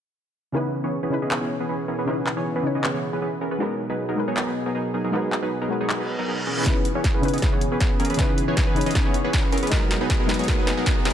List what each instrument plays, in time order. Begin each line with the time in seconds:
0.52 analog synth pad B2 E3 C#4 G#4, synth pluck C#3 C#4 D#4 E4, supersaw synth E3 B3 C#4 G#4 B4
0.56 synth pluck B4
0.84 supersaw synth E3 B3 C#4 G#4 C#5
1.03 supersaw synth E3 B3 C#4 G#4 B4
1.10 synth pluck C#3 C#4 D#4 E4 B4
1.22 supersaw synth E3 B3 C#4 G#4 D#5
1.31 supersaw synth E3 B3 C#4 G#4 B4, clap
1.41 supersaw synth E3 B3 C#4 G#4 C#5
1.60 supersaw synth E3 B3 C#4 G#4 B4
1.69 supersaw synth E3 B3 C#4 G#4 B4
1.88 supersaw synth E3 B3 C#4 G#4 A#4
1.99 supersaw synth E3 B3 C#4 G#4 B4
2.05 synth pluck C#3 C#4 D#4 E4, supersaw synth E3 B3 C#4 G#4 B4
2.09 synth pluck B4
2.26 clap
2.37 supersaw synth E3 B3 C#4 G#4 C#5
2.56 supersaw synth E3 B3 C#4 G#4 B4
2.63 synth pluck C#3 C#4 D#4 E4
2.67 synth pluck C#5
2.75 supersaw synth E3 B3 C#4 G#4 D#5
2.84 supersaw synth E3 B3 C#4 G#4 B4, clap
2.94 supersaw synth E3 B3 C#4 G#4 C#5
3.13 supersaw synth E3 B3 C#4 G#4 B4
3.22 supersaw synth E3 B3 C#4 G#4 B4
3.41 supersaw synth E3 B3 C#4 G#4 A#4
3.51 supersaw synth E3 B3 C#4 G#4 B4
3.58 analog synth pad B2 F#3 B3 G#4, supersaw synth F#3 B3 D#4 G#4 A#4, synth pluck G#3 D#4 F#4 A#4 B4
3.90 supersaw synth F#3 B3 D#4 G#4 B4
4.09 supersaw synth F#3 B3 D#4 G#4 A#4
4.16 synth pluck G#3 D#4 F#4 A#4
4.20 synth pluck B4
4.28 supersaw synth F#3 B3 D#4 G#4 C#5
4.37 supersaw synth F#3 B3 D#4 G#4 A#4, clap
4.47 supersaw synth F#3 B3 D#4 G#4 B4
4.66 supersaw synth F#3 B3 D#4 G#4 A#4
4.75 supersaw synth F#3 B3 D#4 G#4 A#4
4.94 supersaw synth F#3 B3 D#4 G#4 A#4
5.04 supersaw synth F#3 B3 D#4 G#4 A#4
5.11 supersaw synth F#3 B3 D#4 G#4 A#4, synth pluck G#3 D#4 F#4 A#4
5.15 synth pluck B4
5.32 clap
5.43 supersaw synth F#3 B3 D#4 G#4 B4
5.62 supersaw synth F#3 B3 D#4 G#4 A#4
5.68 synth pluck G#3 D#4 F#4 A#4
5.72 synth pluck B4
5.81 supersaw synth F#3 B3 D#4 G#4 C#5
5.89 supersaw synth F#3 B3 D#4 G#4 A#4, clap, reverse cymbal
6.00 supersaw synth F#3 B3 D#4 G#4 B4
6.19 supersaw synth F#3 B3 D#4 G#4 A#4
6.28 supersaw synth F#3 B3 D#4 G#4 A#4
6.47 supersaw synth E3 B3 C#4 G#4 A#4
6.57 supersaw synth E3 B3 C#4 G#4 B4
6.64 analog synth pad B2 E3 C#4 G#4, synth pluck C#3 C#4 D#4 E4 B4, supersaw synth B3, kick, snare, closed hi-hat, riser
6.85 closed hi-hat
6.95 supersaw synth E3 B3 C#4 G#4 C#5
7.04 kick, snare, closed hi-hat
7.14 supersaw synth E3 B3 C#4 G#4 B4
7.21 synth pluck C#3 C#4 D#4 E4 B4, closed hi-hat
7.28 closed hi-hat
7.33 supersaw synth E3 B3 C#4 G#4 D#5, closed hi-hat
7.38 closed hi-hat
7.42 supersaw synth E3 B3 C#4 G#4 B4, kick, snare, closed hi-hat
7.53 supersaw synth E3 B3 C#4 G#4 C#5
7.61 closed hi-hat
7.72 supersaw synth E3 B3 C#4 G#4 B4
7.80 kick, snare, closed hi-hat
8.00 supersaw synth E3 B3 C#4 G#4 A#4, closed hi-hat
8.05 closed hi-hat
8.10 supersaw synth E3 B3 C#4 G#4 B4, closed hi-hat
8.14 synth pluck C#3 C#4, closed hi-hat
8.18 supersaw synth E3 B3 G#4 B4, synth pluck D#4 E4 B4, kick, snare, closed hi-hat
8.38 closed hi-hat
8.48 supersaw synth E3 B3 C#4 G#4 C#5
8.57 kick, snare, closed hi-hat
8.67 supersaw synth E3 B3 C#4 G#4 B4
8.74 synth pluck C#3 C#4 D#4 E4 C#5, closed hi-hat
8.81 closed hi-hat
8.86 supersaw synth E3 B3 C#4 G#4 D#5, closed hi-hat
8.91 closed hi-hat
8.95 supersaw synth E3 B3 C#4 G#4 B4, kick, snare, closed hi-hat
9.05 supersaw synth E3 B3 C#4 G#4 C#5
9.14 closed hi-hat
9.24 supersaw synth E3 B3 C#4 G#4 B4
9.33 supersaw synth E3 C#4 G#4, kick, snare, closed hi-hat
9.52 supersaw synth E3 B3 C#4 G#4 A#4, closed hi-hat
9.58 closed hi-hat
9.63 supersaw synth E3 B3 C#4 G#4 B4, closed hi-hat
9.67 synth pluck G#3 D#4, closed hi-hat
9.71 analog synth pad B2 F#3 B3, supersaw synth F#3 B3 D#4 G#4 A#4, synth pluck F#4 A#4 B4, kick, snare, closed hi-hat
9.91 snare, closed hi-hat
10.01 supersaw synth F#3 B3 D#4 G#4 B4
10.10 kick, snare, closed hi-hat
10.20 supersaw synth F#3 B3 D#4 G#4 A#4
10.27 synth pluck G#3 D#4 F#4 A#4 B4, snare, closed hi-hat
10.34 closed hi-hat
10.39 supersaw synth F#3 B3 D#4 G#4 C#5, closed hi-hat
10.44 closed hi-hat
10.48 supersaw synth F#3 B3 D#4 G#4 A#4, kick, snare, closed hi-hat
10.58 supersaw synth F#3 B3 D#4 G#4 B4
10.67 snare, closed hi-hat
10.77 supersaw synth F#3 B3 D#4 G#4 A#4
10.86 kick, snare, closed hi-hat
11.05 supersaw synth F#3 B3 D#4 G#4 A#4, snare, closed hi-hat